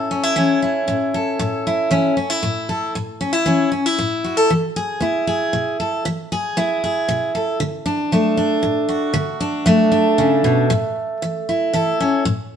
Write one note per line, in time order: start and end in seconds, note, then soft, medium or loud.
0.00 0.31 A2 medium
0.00 0.11 C#4 medium
0.00 0.10 E4 soft
0.00 1.14 A4 soft
0.11 0.23 C#4 medium
0.23 0.61 E4 medium
0.36 0.83 E3 medium
0.36 1.91 C#4 medium
0.62 1.66 E4 medium
0.88 1.35 A2 medium
1.14 2.69 A4 medium
1.39 1.86 A2 medium
1.67 2.16 E4 medium
1.91 2.38 E3 medium
1.91 2.16 C#4 medium
2.17 2.30 C#4 medium
2.30 2.95 E4 medium
2.43 2.90 A2 medium
2.69 2.92 A4 medium
2.95 3.42 A2 medium
3.21 3.33 C#4 medium
3.33 3.71 E4 medium
3.46 3.93 E3 medium
3.46 3.70 C#4 medium
3.72 3.86 C#4 medium
3.86 4.50 E4 soft
3.98 4.45 A2 medium
4.24 4.37 F#4 medium
4.37 4.50 A4 soft
4.50 4.97 E3 medium
4.76 5.27 G#4 medium
5.01 5.48 B3 medium
5.01 6.02 E4 medium
5.27 5.79 G#4 medium
5.53 6.00 B2 medium
5.80 6.02 A4 medium
6.05 6.52 E3 medium
6.32 6.82 G#4 medium
6.57 7.03 B3 medium
6.57 7.57 E4 medium
6.84 7.34 G#4 medium
7.09 7.55 B2 medium
7.35 7.57 A4 medium
7.60 8.07 D3 medium
7.86 8.37 D4 medium
8.12 8.59 F#3 medium
8.12 9.66 A3 medium
8.37 9.12 D4 medium
8.63 9.10 A2 medium
8.89 10.70 F#4 medium
9.14 9.61 D3 medium
9.40 9.90 D4 medium
9.66 10.13 F#3 medium
9.66 12.00 A3 medium
9.92 10.67 D4 medium
10.18 10.44 C#3 medium
10.44 10.70 B2 medium
10.70 11.17 A2 medium
11.22 11.69 E3 medium
11.49 12.23 E4 medium
11.73 12.20 E3 medium
11.73 12.23 A4 medium
12.00 12.23 C#4 medium
12.25 12.56 A2 medium